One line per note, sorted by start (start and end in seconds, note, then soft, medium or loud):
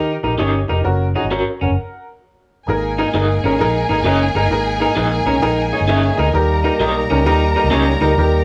0.00 0.17 D#3 medium
0.00 0.11 D#4 medium
0.00 0.14 D#4 loud
0.00 0.15 G4 medium
0.00 0.15 A#4 loud
0.23 0.35 A#1 medium
0.23 0.35 D#4 medium
0.23 0.33 D#4 medium
0.23 0.35 G4 medium
0.23 0.35 A#4 medium
0.38 0.62 G1 medium
0.38 0.57 C#4 medium
0.38 0.54 D#4 medium
0.38 0.61 D#4 medium
0.38 0.55 G4 medium
0.38 0.61 G4 medium
0.38 0.55 A#4 medium
0.38 0.61 C#5 medium
0.38 0.55 D#5 loud
0.68 0.81 F1 medium
0.68 0.80 D#4 medium
0.68 0.78 D#4 medium
0.68 0.80 G4 medium
0.68 0.80 A#4 medium
0.84 1.14 F#1 loud
0.84 1.06 C#4 medium
0.84 1.06 F#4 medium
0.84 1.06 A#4 medium
1.15 1.26 C#4 medium
1.15 1.24 D#4 medium
1.15 1.26 F#4 medium
1.15 1.27 G#4 medium
1.24 1.41 G#1 medium
1.30 1.46 C#4 medium
1.30 1.47 F#4 medium
1.30 1.47 A#4 medium
1.30 1.60 C#5 soft
1.30 1.47 C#5 medium
1.30 1.59 A#5 medium
1.61 1.67 F#1 medium
1.61 1.70 C#4 medium
1.61 2.05 A#4 medium
1.61 2.05 F#5 medium
1.70 1.75 F#1 medium
2.67 3.03 G#1 loud
2.67 6.30 G#3 medium
2.67 6.30 A#3 medium
2.67 8.44 D#4 medium
2.67 2.90 D#4 medium
2.67 6.30 G#4 medium
2.67 2.90 G#4 medium
2.67 2.90 A#4 loud
2.67 6.30 G#5 medium
2.98 3.09 D#4 medium
2.98 3.07 D#4 medium
2.98 3.10 G#4 medium
2.98 3.10 A#4 medium
3.14 3.37 G1 medium
3.14 3.30 D#4 medium
3.14 3.36 D#4 medium
3.14 3.30 G#4 medium
3.14 3.36 G#4 medium
3.14 3.30 A#4 medium
3.14 3.36 A#4 medium
3.14 3.30 D#5 medium
3.44 3.56 G#1 medium
3.44 3.53 C#4 medium
3.44 3.56 D#4 medium
3.44 3.56 G#4 medium
3.44 3.56 A#4 loud
3.59 3.83 A#1 medium
3.59 3.76 D#4 medium
3.59 3.81 D#4 loud
3.59 3.82 G#4 medium
3.59 3.82 A#4 loud
3.89 4.01 G#1 medium
3.89 3.98 D#4 medium
3.89 4.01 D#4 medium
3.89 4.01 G#4 medium
3.89 4.01 A#4 medium
4.04 4.28 F#1 medium
4.04 4.23 C#4 medium
4.04 4.21 D#4 medium
4.04 4.27 D#4 medium
4.04 4.21 G#4 medium
4.04 4.27 G#4 medium
4.04 4.21 A#4 loud
4.04 4.27 A#4 medium
4.04 4.22 D#5 loud
4.35 4.47 G1 medium
4.35 4.46 D#4 medium
4.35 4.44 D#4 medium
4.35 4.47 G#4 medium
4.35 4.47 A#4 medium
4.51 4.85 G#1 loud
4.51 4.72 D#4 loud
4.51 4.73 G#4 medium
4.51 4.73 A#4 loud
4.80 4.92 D#4 medium
4.80 4.90 D#4 medium
4.80 4.92 G#4 medium
4.80 4.93 A#4 loud
4.96 5.19 A#1 medium
4.96 5.12 D#4 medium
4.96 5.18 D#4 medium
4.96 5.12 G#4 medium
4.96 5.18 G#4 medium
4.96 5.12 A#4 medium
4.96 5.18 A#4 medium
4.96 5.13 D#5 medium
5.25 5.38 B1 medium
5.25 5.36 C#4 medium
5.25 5.38 D#4 medium
5.25 5.38 G#4 medium
5.25 5.38 A#4 medium
5.25 5.41 A#5 medium
5.42 5.71 A#1 medium
5.42 5.64 D#4 loud
5.42 5.60 D#4 medium
5.42 5.64 G#4 loud
5.42 5.64 A#4 loud
5.42 5.70 G5 medium
5.72 5.84 D#4 medium
5.72 5.82 D#4 medium
5.72 5.84 G#4 medium
5.72 5.84 C#5 medium
5.72 5.87 G#5 medium
5.81 6.09 G1 medium
5.88 6.06 C#4 medium
5.88 6.04 D#4 medium
5.88 6.09 D#4 medium
5.88 6.09 G#4 medium
5.88 6.04 G#4 medium
5.88 6.04 A#4 medium
5.88 6.10 C#5 loud
5.88 6.04 D#5 loud
5.88 6.16 E5 medium
6.17 6.30 D2 medium
6.17 6.29 D#4 medium
6.17 6.28 D#4 medium
6.17 6.29 G#4 medium
6.17 6.30 A#4 loud
6.17 6.33 D#5 medium
6.33 6.68 D#2 loud
6.33 8.44 G3 medium
6.33 8.44 A#3 medium
6.33 6.55 D#4 medium
6.33 6.55 G4 medium
6.33 8.44 A#4 medium
6.33 6.56 A#4 loud
6.33 8.44 A#5 medium
6.64 6.75 D#4 medium
6.64 6.73 D#4 medium
6.64 6.75 G4 medium
6.64 6.76 A#4 loud
6.79 7.02 B1 loud
6.79 7.01 D#4 medium
6.79 6.95 D#4 medium
6.79 6.96 G4 medium
6.79 7.01 G4 medium
6.79 7.01 A#4 medium
6.79 6.96 A#4 medium
6.79 6.96 D#5 loud
7.10 7.26 C#2 medium
7.10 7.19 C#4 medium
7.10 7.21 D#4 medium
7.10 7.21 G4 medium
7.10 7.22 A#4 loud
7.25 7.54 D#2 loud
7.25 7.47 D#4 loud
7.25 7.43 D#4 medium
7.25 7.47 G4 loud
7.25 7.47 A#4 loud
7.56 7.67 D#4 medium
7.56 7.65 D#4 medium
7.56 7.67 G4 medium
7.56 7.67 A#4 loud
7.64 7.70 C#2 medium
7.71 7.94 C#2 medium
7.71 7.88 C#4 medium
7.71 7.87 D#4 medium
7.71 7.92 D#4 medium
7.71 7.87 G4 medium
7.71 7.93 G4 medium
7.71 7.87 A#4 loud
7.71 7.93 C#5 loud
7.71 7.87 D#5 loud
8.01 8.13 D2 medium
8.01 8.10 D#4 medium
8.01 8.12 D#4 medium
8.01 8.12 G4 medium
8.01 8.12 A#4 loud
8.17 8.44 D#2 loud
8.17 8.38 D#4 medium
8.17 8.39 G4 loud
8.17 8.39 A#4 loud